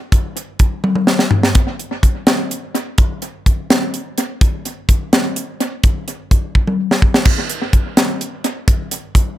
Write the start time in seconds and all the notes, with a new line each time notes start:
0.12 kick, closed hi-hat
0.37 closed hi-hat
0.59 kick, closed hi-hat
0.84 high tom
0.95 high tom
1.07 snare
1.19 snare
1.31 floor tom
1.43 snare
1.55 kick, closed hi-hat
1.79 closed hi-hat
2.03 kick, closed hi-hat
2.27 snare, closed hi-hat
2.51 closed hi-hat
2.75 closed hi-hat
2.98 kick, closed hi-hat
3.22 closed hi-hat
3.46 kick, closed hi-hat
3.70 snare, closed hi-hat
3.94 closed hi-hat
4.18 closed hi-hat
4.41 kick, closed hi-hat
4.65 closed hi-hat
4.89 kick, closed hi-hat
5.13 snare, closed hi-hat
5.36 closed hi-hat
5.60 closed hi-hat
5.83 kick, closed hi-hat
6.08 closed hi-hat
6.31 kick, closed hi-hat
6.55 kick
6.67 high tom
6.91 snare
7.02 kick
7.14 snare
7.25 kick, crash
7.49 closed hi-hat
7.73 kick, closed hi-hat
7.97 snare, closed hi-hat
8.21 closed hi-hat
8.44 closed hi-hat
8.68 kick, closed hi-hat
8.91 closed hi-hat
9.15 kick, closed hi-hat